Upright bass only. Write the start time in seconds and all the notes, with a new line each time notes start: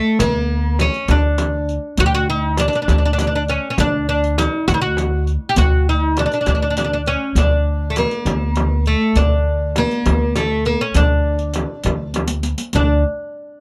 0.20 D2
1.09 D2
1.98 D2
2.88 D2
3.78 D2
4.68 D2
5.57 D2
6.47 D2
7.35 D2
8.25 D2
9.16 D2
10.06 D2
10.95 D2
11.85 D2
12.75 D2